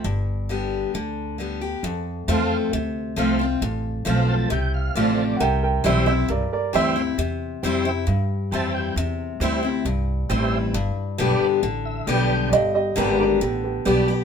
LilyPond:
<<
  \new Staff \with { instrumentName = "Tonewheel organ" } { \time 4/4 \key c \major \tempo 4 = 135 << { r1 | r1 | r4. a''8 g''8 f''8 d''4 | r1 |
r2. a''8 g''8 | r1 | r2 r8 e''8 g''4 | r1 | } \\ { r1 | r4 <a' c'' f''>8 r4. <a' c'' f''>8 r8 | r4 <a' c'' f''>8 r4. <a' c'' f''>8 r8 | r4 <g' c'' e''>8 r4. <g' c'' e''>8 r8 |
r4 <g' c'' e''>8 r4. <g' c'' e''>8 r8 | r4 <g' c'' e''>8 r4. <g' c'' e''>8 r8 | r4 <g' b' d''>8 r4. <g' b' d''>8 r8 | r4 <g' b' d''>8 r4. <g' b' d''>8 r8 | } >> }
  \new Staff \with { instrumentName = "Upright piano" } { \time 4/4 \key c \major r1 | r1 | r1 | <bes' fis'' g''>8 <bes' g''>8 <g' e''>8 <g' e''>8 <bes' d''>8 <bes' d''>8 e''8 r8 |
r1 | r1 | r1 | <g' d'' ees''>8 <g' ees''>8 <d' bes'>8 <d' bes'>8 <b g'>8 <b g'>8 <b g'>4 | }
  \new Staff \with { instrumentName = "Steel-string acoustic guitar" } { \time 4/4 \key c \major << { r4 <d g b g'>4 r4 <d g b g'>8 <b g'>8 | r4 <a c' f'>4 r4 <f a c' f'>8 <c' f'>8 | r4 <f a c' f'>4 r4 <f a c' f'>4 | r4 <e g c' e'>8 <c' e'>8 r4 <e g c' e'>8 <c' e'>8 |
r4 <e g c' e'>8 <c' e'>8 r4 <e g c' e'>4 | r4 <e g c' e'>8 <c' e'>8 r4 <e g c' e'>4 | r4 <d g b g'>4 r4 <d g b g'>4 | r4 <d g b g'>4 r4 <d g b g'>8 <b g'>8 | } \\ { g,2 d2 | f,2 c2 | f,2 c2 | c2 g,2 |
c2 g,2 | c2 g,2 | g,2 d2 | g,2 d2 | } >> }
  \new Staff \with { instrumentName = "Upright bass" } { \clef bass \time 4/4 \key c \major g,,2 d,2 | f,4 e,4 d,4 c,4 | a,,4 b,,4 c,4 a,,4 | c,4 b,,4 c,8 r8 d,4 |
e,4 f,4 g,4 f,4 | e,4 d,4 c,4 a,,4 | g,,8 r8 b,,8 r8 a,,4 b,,4 | g,,4 aes,,4 a,,4 b,,4 | }
>>